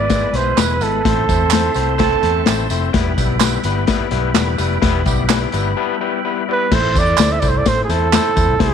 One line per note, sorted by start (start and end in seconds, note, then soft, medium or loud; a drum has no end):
0.00 0.25 G#1 medium
0.00 1.03 B4 medium
0.00 0.37 D5 loud
0.00 2.90 E5 medium
0.00 1.03 G#5 medium
0.00 1.03 B5 medium
0.10 0.29 G#3 medium
0.10 0.29 B3 medium
0.10 0.29 E4 medium
0.10 0.29 B4 loud
0.10 kick loud
0.10 snare loud
0.10 closed hi-hat medium
0.10 tambourine medium
0.33 0.53 B1 medium
0.33 0.52 G#3 medium
0.33 0.53 B3 medium
0.33 0.53 E4 medium
0.33 0.53 B4 medium
0.33 0.61 C5 medium
0.33 snare soft
0.33 closed hi-hat medium
0.33 tambourine soft
0.57 0.81 E1 medium
0.57 0.76 G#3 medium
0.57 0.76 B3 medium
0.57 0.76 E4 medium
0.57 0.76 B4 medium
0.57 0.84 B4 medium
0.57 snare loud
0.57 clap medium
0.57 closed hi-hat medium
0.57 tambourine medium
0.81 1.00 G#1 medium
0.81 0.99 G#3 medium
0.81 0.99 B3 medium
0.81 0.99 E4 medium
0.81 2.71 A4 medium
0.81 1.00 B4 medium
0.81 closed hi-hat medium
0.81 tambourine medium
1.04 1.24 A1 loud
1.04 1.23 A3 medium
1.04 1.23 C4 medium
1.04 1.23 E4 medium
1.04 2.92 C5 medium
1.04 1.24 C5 loud
1.04 2.92 A5 medium
1.04 2.92 C6 medium
1.04 kick loud
1.04 snare loud
1.04 closed hi-hat medium
1.28 1.67 E2 medium
1.28 1.73 A3 medium
1.28 1.47 A3 medium
1.28 1.73 C4 medium
1.28 1.47 C4 medium
1.28 1.73 E4 medium
1.28 1.47 E4 medium
1.28 1.73 C5 medium
1.28 1.47 C5 medium
1.28 kick medium
1.28 closed hi-hat medium
1.28 tambourine medium
1.50 1.71 A3 medium
1.50 1.71 C4 medium
1.50 1.71 E4 medium
1.50 1.71 C5 loud
1.50 snare loud
1.50 clap loud
1.50 closed hi-hat medium
1.50 tambourine loud
1.74 2.14 C2 medium
1.74 1.94 A3 medium
1.74 1.94 C4 medium
1.74 1.94 E4 medium
1.74 1.94 C5 medium
1.74 closed hi-hat medium
1.74 tambourine medium
1.98 2.66 E3 loud
1.98 2.17 A3 loud
1.98 2.66 A3 loud
1.98 2.17 C4 loud
1.98 2.66 C4 loud
1.98 2.17 E4 loud
1.98 2.66 A4 loud
1.98 2.17 C5 loud
1.98 kick medium
1.98 snare loud
1.98 closed hi-hat medium
1.98 tambourine medium
2.22 2.42 E2 medium
2.22 2.41 A3 medium
2.22 2.41 C4 medium
2.22 2.41 E4 medium
2.22 2.41 C5 medium
2.22 snare soft
2.22 closed hi-hat medium
2.46 2.66 A1 medium
2.46 2.65 A3 medium
2.46 2.65 C4 medium
2.46 2.65 E4 medium
2.46 2.65 C5 loud
2.46 snare loud
2.46 clap medium
2.46 closed hi-hat medium
2.46 tambourine medium
2.70 2.89 F1 medium
2.70 2.89 A3 medium
2.70 2.89 C4 medium
2.70 2.89 E4 medium
2.70 2.89 C5 medium
2.70 closed hi-hat medium
2.70 tambourine medium
2.92 3.13 E1 medium
2.92 3.12 G3 loud
2.92 3.12 B3 loud
2.92 3.12 E4 loud
2.92 6.67 B4 medium
2.92 3.12 B4 loud
2.92 6.67 E5 medium
2.92 6.67 G5 medium
2.92 6.67 B5 medium
2.92 kick loud
2.92 snare loud
2.92 closed hi-hat medium
2.92 tambourine soft
3.17 3.56 B1 loud
3.17 3.36 G3 medium
3.17 3.36 B3 medium
3.17 3.36 E4 medium
3.17 3.36 B4 loud
3.17 kick medium
3.17 closed hi-hat medium
3.17 tambourine medium
3.40 3.59 G3 medium
3.40 3.59 B3 medium
3.40 3.59 E4 medium
3.40 3.59 B4 loud
3.40 snare loud
3.40 clap loud
3.40 closed hi-hat medium
3.40 tambourine loud
3.63 3.84 G1 loud
3.63 3.83 G3 medium
3.63 3.83 B3 medium
3.63 3.83 E4 medium
3.63 3.83 B4 loud
3.63 closed hi-hat medium
3.63 tambourine medium
3.87 4.06 G3 loud
3.87 4.06 B3 loud
3.87 4.06 E4 loud
3.87 4.06 B4 loud
3.87 kick medium
3.87 snare loud
3.87 closed hi-hat medium
3.87 tambourine medium
4.00 muted fingered electric bass stroke soft
4.11 4.31 B1 medium
4.11 4.30 G3 loud
4.11 4.30 B3 medium
4.11 4.30 E4 medium
4.11 4.30 B4 loud
4.11 snare soft
4.11 closed hi-hat medium
4.34 4.55 E1 medium
4.34 4.53 G3 medium
4.34 4.53 B3 medium
4.34 4.54 E4 medium
4.34 4.54 B4 loud
4.34 snare loud
4.34 clap medium
4.34 closed hi-hat medium
4.34 tambourine medium
4.58 4.78 F1 loud
4.58 4.77 G3 medium
4.58 4.77 B3 medium
4.58 4.77 E4 medium
4.58 4.77 B4 loud
4.58 closed hi-hat medium
4.58 tambourine medium
4.81 5.02 E1 loud
4.81 5.00 G3 loud
4.81 5.00 B3 loud
4.81 5.00 E4 loud
4.81 5.00 B4 loud
4.81 kick loud
4.81 snare loud
4.81 closed hi-hat medium
4.81 tambourine soft
5.06 5.45 B1 loud
5.06 5.24 G3 medium
5.06 5.24 B3 medium
5.06 5.24 E4 medium
5.06 5.24 G4 medium
5.06 kick medium
5.06 closed hi-hat medium
5.06 tambourine medium
5.28 5.47 G3 medium
5.28 5.47 B3 medium
5.28 5.47 E4 medium
5.28 5.48 B4 loud
5.28 snare loud
5.28 clap loud
5.28 closed hi-hat medium
5.28 tambourine loud
5.52 5.73 G1 loud
5.52 5.72 G3 medium
5.52 5.72 B3 medium
5.52 5.72 E4 medium
5.52 5.72 B4 loud
5.52 5.75 B5 medium
5.52 closed hi-hat medium
5.52 tambourine medium
5.77 5.95 G3 loud
5.77 5.95 B3 loud
5.77 5.95 E4 loud
5.77 5.95 B4 loud
5.77 5.99 A5 medium
6.00 6.19 G3 medium
6.00 6.19 B3 medium
6.00 6.19 E4 medium
6.00 6.19 B4 loud
6.00 6.23 G5 medium
6.25 6.43 G3 medium
6.25 6.43 B3 medium
6.25 6.43 E4 medium
6.25 6.43 B4 loud
6.25 6.46 E5 medium
6.48 6.66 G3 medium
6.48 6.66 B3 medium
6.48 6.66 E4 medium
6.48 6.67 B4 loud
6.48 6.75 B4 loud
6.48 6.70 D5 medium
6.70 6.95 A1 loud
6.70 8.57 A3 medium
6.70 8.74 C4 medium
6.70 8.58 E4 medium
6.70 6.90 E4 loud
6.70 8.57 A4 medium
6.70 6.90 A4 medium
6.70 6.90 C5 loud
6.70 kick loud
6.70 snare loud
6.70 crash loud
6.70 tambourine soft
6.74 7.00 C5 loud
6.95 7.14 E2 medium
6.95 7.13 E4 medium
6.95 7.13 A4 medium
6.95 7.13 D5 medium
6.95 7.33 D5 loud
6.95 kick medium
6.95 closed hi-hat medium
6.95 tambourine medium
7.17 7.38 D2 medium
7.17 7.37 E4 medium
7.17 7.37 A4 medium
7.17 7.37 C5 medium
7.17 snare loud
7.17 clap loud
7.17 closed hi-hat medium
7.17 tambourine loud
7.32 7.41 E5 loud
7.40 7.61 C2 loud
7.40 7.60 E4 medium
7.40 7.61 A4 medium
7.40 7.61 C5 medium
7.40 7.51 D5 medium
7.40 kick medium
7.40 closed hi-hat medium
7.40 tambourine medium
7.49 7.59 C5 medium
7.58 7.69 D5 medium
7.66 7.85 A2 loud
7.66 7.84 E4 medium
7.66 7.84 A4 medium
7.66 7.84 C5 medium
7.66 7.83 C5 loud
7.66 kick loud
7.66 snare loud
7.66 closed hi-hat medium
7.66 tambourine medium
7.84 7.92 G#4 medium
7.89 8.18 E2 medium
7.89 8.08 E4 loud
7.89 8.08 A4 medium
7.89 8.63 A4 loud
7.89 8.08 C5 loud
7.89 snare soft
7.89 closed hi-hat medium
7.89 tambourine soft
8.13 8.31 E4 loud
8.13 8.31 A4 medium
8.13 8.31 C5 loud
8.13 snare loud
8.13 clap medium
8.13 closed hi-hat medium
8.13 tambourine medium
8.36 8.46 E2 loud
8.36 8.54 E4 medium
8.36 8.54 A4 medium
8.36 8.54 C5 medium
8.36 kick medium
8.36 closed hi-hat medium
8.36 tambourine medium
8.48 8.58 B1 medium
8.59 8.74 C2 loud
8.59 8.74 G3 medium
8.59 8.74 E4 loud
8.59 8.74 E4 medium
8.59 8.74 G4 medium
8.59 8.74 G4 loud
8.59 8.74 C5 loud
8.59 kick loud
8.59 snare loud
8.59 closed hi-hat loud